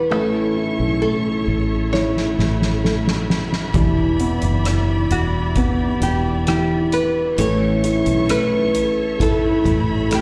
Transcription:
Already playing: E1 E3 G3 B3 D4 E4 B4
0.10 A1 A2 E3 A3 C#4 E4 A4 C#5 E5 C#6
0.56 E4
0.80 B1
1.02 A3 A4
1.48 A1
1.92 E3 A3 C#4 E4 C#5 B5, snare
2.17 snare
2.37 A1 A3 C#4 E4, snare
2.62 snare
2.84 A3, snare
3.07 snare
3.30 snare
3.53 snare
3.72 E1 E2 B2 E3 G3 D4 E4 D5, kick, closed hi-hat
4.20 B3, closed hi-hat
4.42 F#1, closed hi-hat
4.65 E3, cross-stick, closed hi-hat
5.11 E1 F#4, closed hi-hat
5.55 E3 G3 B3 D4 E4, kick, closed hi-hat
6.01 E1 E3 G3 D4 E4 G4, closed hi-hat
6.47 E3 G4, cross-stick, closed hi-hat
6.92 B4, closed hi-hat
7.37 A1 A2 E3 A3 C#4 A4 C#5 E5 C#6, closed hi-hat
7.41 E4
7.84 E4, closed hi-hat
8.06 B1, closed hi-hat
8.29 A3 B4, cross-stick, closed hi-hat
8.75 A1, closed hi-hat
9.19 E3 A3 C#4 E4 A4 B5, kick, closed hi-hat
9.64 A1 A3 C#4 E4, kick, closed hi-hat
10.11 A3 G4, cross-stick, closed hi-hat

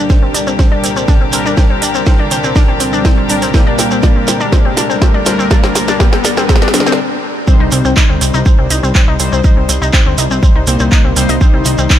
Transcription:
Already playing: C2 A#2 D3 G3 D4 G4 A#4, riser
0.10 C4, kick, snare, shekere
0.23 C4
0.34 D4, open hi-hat, shekere
0.47 C4, shekere
0.59 C4, kick, snare, shekere
0.72 D4
0.84 C4, open hi-hat, shekere
0.96 C4, shekere
1.08 D4, kick, snare, shekere
1.21 C4
1.33 G3 C4 D4 A#4, open hi-hat, shekere
1.46 D4, shekere
1.57 G3 C4 D4 A#4, kick, snare, shekere
1.70 C4
1.82 D4, open hi-hat, shekere
1.94 C4, shekere
2.06 C4, kick, snare, shekere
2.19 D4
2.31 C4, open hi-hat, shekere
2.44 C4, shekere
2.55 D4, kick, snare, shekere
2.68 C4
2.80 G3 C4 D4 A#4, open hi-hat, shekere
2.93 D4, shekere
3.05 C4, kick, snare, shekere
3.18 C4
3.29 G3 D4 A#4, open hi-hat, shekere
3.42 C4, open hi-hat, shekere
3.54 G3 A#3 C4 D4 A#4, kick, snare, shekere
3.67 D4
3.79 C4, snare, open hi-hat, shekere
3.91 C4, shekere
4.03 D4, kick, snare, shekere
4.16 C4
4.28 C4, snare, open hi-hat, shekere
4.40 D4, shekere
4.52 C4, kick, snare, shekere
4.65 C4
4.77 D4, snare, open hi-hat, shekere
4.90 C4, shekere
5.01 C4, kick, snare, shekere
5.14 D4
5.26 G3 C4 D4 A#4, snare, open hi-hat, shekere
5.39 C4, shekere
5.51 G3 D4 A#4, kick, snare, shekere
5.63 C4, snare
5.75 C4, snare, open hi-hat, shekere
5.88 D4, snare, shekere
6.00 C4, kick, snare, shekere
6.13 C4, snare
6.24 D4, snare, open hi-hat, shekere
6.37 C4, snare, shekere
6.49 C4, kick, snare, shekere
6.56 snare
6.62 D4, snare
6.68 snare
6.74 G3 C4 D4 A#4, snare, open hi-hat, shekere
6.80 snare
6.86 C4, snare, shekere
6.92 snare
7.47 G3 C4 D#4 C5, kick, shekere
7.60 C2 D#4
7.72 C2 C4, open hi-hat, shekere
7.85 C2 C4, shekere
7.96 D#4, kick, clap, shekere
8.09 D2 C4
8.21 C2 C4, open hi-hat, shekere
8.34 C2 D#4, shekere
8.46 C4, kick, shekere
8.59 C2 C4
8.70 C2 D#4, open hi-hat, shekere
8.83 C2 C4, shekere
8.95 C4, kick, clap, shekere
9.08 C2 D#4
9.20 C2 G3 C4 D#4 C5, open hi-hat, shekere
9.32 C2 C4, shekere
9.44 G3 D#4 C5, kick, shekere
9.57 C2 C4
9.69 C2 C4, open hi-hat, shekere
9.82 C2 D#4, shekere
9.93 C4, kick, clap, shekere
10.06 D2 C4
10.18 C2 D#4, open hi-hat, shekere
10.31 C2 C4, shekere
10.43 C4, kick, shekere
10.55 C2 D#4
10.67 C2 G3 A#3 C4 D#4 C5, open hi-hat, shekere
10.79 C2 C4, shekere
10.92 D#4, kick, clap, shekere
11.04 C2 C4
11.16 C2 G3 C4 D#4 C5, open hi-hat, shekere
11.29 C2 D#4, open hi-hat, shekere
11.41 G3 C4 D#4 C5, kick, shekere
11.54 C2 C4
11.65 C2 D#4, open hi-hat, shekere
11.78 C2 C4, shekere
11.90 C4, kick, clap, shekere

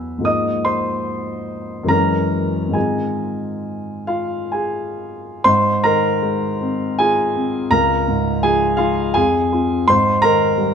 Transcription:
Already playing: E2 F#3 G#3 B3 E4 F#5 G#5 B5 E6
0.18 G#2 F3 G#3
0.23 A#3 D#4 D#5 D#6
0.65 C5 C6
1.83 F#2 E3 G#3
1.88 C#4 F#4 A#4 A#5
2.69 G#2 D#3 G#3
2.73 C4 F4 G#4 G#5
4.07 F4 F5
4.52 G#4 G#5
5.44 G#2 C5 C6
5.84 D#3 A#4 A#5
6.22 G#3
6.61 C4
6.99 F4 G#4 G#5
7.36 C4
7.71 C#2 A#4 A#5
8.08 G#2
8.43 F3 G#4 G#5
8.77 G#3 F4 F5
9.14 F2 G#4 G#5
9.52 C4 F4
9.88 G#2 C5 C6
10.22 D#3 A#4 A#5
10.58 G3

